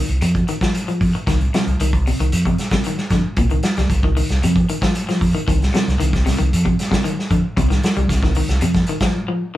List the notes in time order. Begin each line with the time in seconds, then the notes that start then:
0.09 C2, closed hi-hat
0.21 F2, muted clean electric guitar stroke, closed hi-hat
0.35 kick, closed hi-hat
0.48 D#3, closed hi-hat
0.61 F3, kick, snare, closed hi-hat
0.74 closed hi-hat
0.88 F3, closed hi-hat
1.01 F2, kick, open hi-hat
1.15 muted clean electric guitar stroke, closed hi-hat
1.27 C2 D#3, kick, snare, closed hi-hat
1.41 closed hi-hat
1.54 C3, snare, closed hi-hat
1.67 C2, closed hi-hat
1.80 C2 D#3, closed hi-hat
1.93 kick, closed hi-hat
2.07 C3, open hi-hat
2.20 C2 D#3, closed hi-hat
2.32 F2, closed hi-hat
2.45 C3, kick, closed hi-hat
2.58 snare, closed hi-hat
2.71 C3, kick, snare, closed hi-hat
2.84 D#3, closed hi-hat
2.98 snare
3.10 F2 D3, kick, snare, closed hi-hat
3.36 C2 A#2, kick, closed hi-hat
3.50 D#3, closed hi-hat
3.63 snare, closed hi-hat
3.76 C2 G3, snare, closed hi-hat
3.90 C2, kick, closed hi-hat
4.03 D#3, kick
4.16 D#3, open hi-hat
4.29 C2, snare, closed hi-hat
4.43 F2 C3, closed hi-hat
4.56 kick, closed hi-hat
4.69 D#3, closed hi-hat
4.82 F3, kick, snare, closed hi-hat
4.95 closed hi-hat
5.08 F3, snare, closed hi-hat
5.21 F2, kick, open hi-hat
5.35 D#3, closed hi-hat
5.48 C2 D#3, kick, closed hi-hat
5.62 snare, closed hi-hat
5.74 C3, snare, closed hi-hat
5.88 C2, snare, closed hi-hat
6.00 C2 D#3, closed hi-hat
6.13 kick, snare, closed hi-hat
6.26 C3, snare, open hi-hat
6.39 C2 D#3, closed hi-hat
6.53 F2, closed hi-hat
6.65 C3, kick, closed hi-hat
6.79 snare, closed hi-hat
6.91 C3, kick, snare, closed hi-hat
7.04 D#3, closed hi-hat
7.19 snare
7.31 F2 D3, kick, closed hi-hat
7.57 C2 C3, kick, closed hi-hat
7.70 D#3, snare, closed hi-hat
7.83 snare, closed hi-hat
7.96 C2 G3, closed hi-hat
8.09 C2, kick, snare, closed hi-hat
8.23 D#3, kick, snare
8.35 D#3, open hi-hat
8.48 C2, snare, closed hi-hat
8.61 F2 C3, closed hi-hat
8.74 kick, snare, closed hi-hat
8.86 D#3, closed hi-hat
9.00 F3, kick, snare, closed hi-hat
9.28 F3